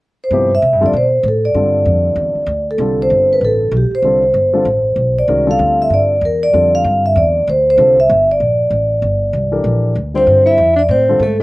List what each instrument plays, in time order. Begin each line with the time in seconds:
0.24 vibraphone C5
0.30 upright bass G2, upright piano C3 F3 B3 E4 G4
0.55 vibraphone E5
0.62 upright bass C3
0.72 upright bass G2
0.81 upright bass F2, upright piano D3 G3 C4 F4 A4
0.86 vibraphone D5
0.93 upright bass B2, vibraphone C5
1.23 upright bass A2
1.28 vibraphone A4
1.45 vibraphone D5
1.54 upright bass G2, upright piano D3 G3 C4 F4 A4
1.85 upright bass F2
2.16 upright bass E2
2.35 muted upright bass stroke
2.46 upright bass D2
2.71 vibraphone A4
2.78 upright bass C2, upright piano D3 G3 C4 F4 A4
3.02 vibraphone C5
3.10 upright bass G1
3.33 vibraphone B4
3.41 upright bass A1, vibraphone A4
3.71 upright bass B1
3.77 vibraphone G4
3.91 muted upright bass stroke
3.95 vibraphone C5
4.02 upright bass C2, upright piano D3 G3 C4 F4 A4
4.34 upright bass G1
4.53 upright piano D3 G3 C4 F4 A4
4.65 upright bass A1
4.96 upright bass B1
5.19 vibraphone D5
5.28 upright bass C2, upright piano D#3 G#3 C#4 F#4 A#4
5.46 upright piano D3 G3 C4 F4 A4
5.51 vibraphone F5
5.59 upright bass D2
5.82 vibraphone E5
5.90 upright bass G2, vibraphone D5
6.21 upright bass E2
6.25 vibraphone A#4
6.43 vibraphone D5
6.53 upright bass F2, upright piano D3 G3 C4 F4 A4
6.75 vibraphone F5
6.84 upright bass G2
7.06 vibraphone E5
7.16 upright bass E2, vibraphone D5
7.47 upright bass D2, vibraphone C5
7.70 vibraphone C5
7.78 upright bass C2, upright piano D3 G3 C4 F4 A4
8.00 vibraphone E5
8.09 upright bass G1
8.31 vibraphone D5
8.40 upright bass A#1
8.70 upright bass A1
9.02 upright bass G1
9.33 upright bass C2
9.52 upright piano E3 D4 G4 A4 A#4
9.64 upright bass A#1
9.95 upright bass D2
10.14 upright piano D3 G3 C4 F4 C5, alto saxophone C4, vibraphone C5
10.27 upright bass G2
10.46 alto saxophone E4, vibraphone E5
10.58 upright bass F2
10.76 alto saxophone D4, vibraphone D5
10.89 upright bass A2, alto saxophone C4, vibraphone C5
11.09 upright piano D3 G3 C4 F4 A4
11.19 upright bass G#2, alto saxophone A3, vibraphone A4
11.40 upright piano D3 G3